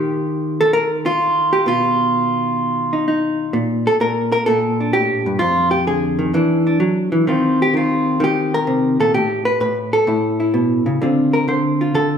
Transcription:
hollow-body jazz guitar
Already playing: D#3 F4 G4
0.61 A4
0.73 A#4
1.06 F4
1.53 G4
1.66 B2 F4
2.93 D#4
3.08 D#4
3.53 A#2
3.87 A4
4.00 A#2 A#4
4.32 A#4
4.46 A#2 A4
4.80 D4
4.93 A2 G4
5.26 G2
5.39 F2 F4
5.71 G4
5.87 D3 G#4
6.19 D#3
6.34 E3 D4
6.67 D4
6.80 F#3
7.12 E3
7.27 D#3 C4 F4
7.62 G4
7.74 D#3 F4
8.20 D#3 G4
8.54 A#4
8.67 C3
9.00 A#2 A4
9.14 A2 G4
9.45 B4
9.60 A2 B4
9.93 A4
10.07 A2 E4
10.40 E4
10.54 B2
10.86 C#3
11.02 D3 C4 F4
11.33 A#4
11.48 D3 C5
11.81 F4
11.95 D3 A4

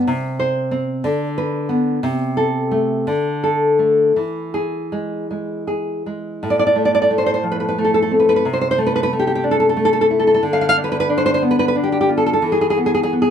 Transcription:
nylon-string guitar
0.07 C3
0.39 C5
0.71 C4
1.04 D3
1.38 B4
1.69 B3
2.03 C3
2.37 A4
2.71 A3
3.07 D3
3.44 A4
3.79 A3
4.16 E3
4.54 G#4
4.92 G#3
5.31 G#3
5.67 G#4
6.06 G#3
6.43 A2
6.50 D5
6.59 D5
6.67 D5
6.75 A3
6.85 D5
6.95 D5
7.02 D5
7.11 A3
7.18 C5
7.26 C5
7.34 C5
7.43 F3
7.52 B4
7.60 B4
7.69 B4
7.78 A3
7.85 A4
7.94 A4
8.02 A4
8.11 C4
8.20 B4
8.29 B4
8.36 B4
8.45 C3
8.53 C5
8.61 C5
8.71 C5
8.78 A3
8.87 B4
8.96 B4
9.03 B4
9.13 A3
9.19 G4
9.27 G4
9.35 G4
9.44 D4
9.51 A4
9.60 A4
9.69 A4
9.77 A3
9.85 A4
9.93 A4
10.01 A4
10.10 E4
10.19 A4
10.27 A4
10.34 A4
10.43 D3
10.53 F5
10.61 F5
10.69 F5
10.77 D4
10.84 B4
10.92 B4
11.00 B4
11.09 D4
11.18 C5
11.26 C5
11.34 C5
11.42 B3
11.51 B4
11.59 B4
11.68 B4
11.76 D4
11.84 G4
11.92 G4
12.01 G4
12.09 F4
12.18 A4
12.26 A4
12.33 A4
12.42 E3
12.52 G#4
12.61 G#4
12.70 G#4
12.77 B3
12.86 G#4
12.94 G#4
13.03 G#4
13.13 B3
13.22 G#4

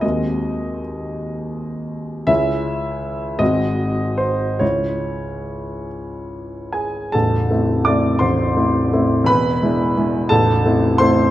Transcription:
grand piano
0.01 D#2 G#3 C4 F#4 D#5
2.27 C#2 G#3 C#4 E4 E5
3.39 G#1 G#3 C4 F#4 D#5
4.18 C5
4.59 C#2 G#3 C#4 E4 C#5
6.73 G#4 G#5
7.12 A0 A1 A4 A5
7.50 A3 C4 E4
7.85 A3 C4 E4 D5 D6
8.19 A0 A1 C5 C6
8.56 A3 C4 E4
8.93 A3 C4 E4
9.24 E1 E2 B4 B5
9.63 G#3 D4 E4
9.97 G#3 D4 E4
10.29 A0 A1 A4 A5
10.65 A3 C4 E4
10.98 A3 C4 E4 C5 C6

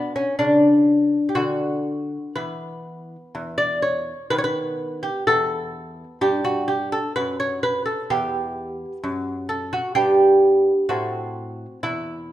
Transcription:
lute
Already playing: B2 B3
0.16 C#4
0.39 C#3 D4
1.29 G4
1.35 D3 F#4
2.35 E3 B3 B4
3.35 E2
3.58 D5
3.82 C#5
4.30 D#3 B3 B4
4.38 C#5
4.44 B4
5.03 G4
5.27 E2 B3 A4
6.21 G2 G4
6.45 F#4
6.68 G4
6.92 A4
7.16 F#2 B4
7.40 C#5
7.63 B4
7.86 A4
8.10 E2 B3 G4
9.04 F#2
9.49 A4
9.73 F#4
9.95 G2 B3 G4
10.89 A2 C4 F#4
11.83 E2 E4

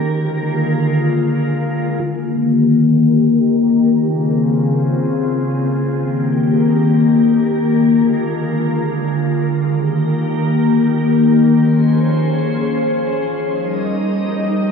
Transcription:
ambient pad
Already playing: A#4
0.09 D3 G#3 F4
2.00 D#3 A#3 G4 A#4
3.90 C#3 C4 F4 G#4
5.81 D#3 A#3 G4 A#4
7.71 D3 G#3 F4
9.62 D#3 A#3 G4 A#4
11.52 F3 C#4 G#4 C5
13.43 G3 D#4 A#4 D#5

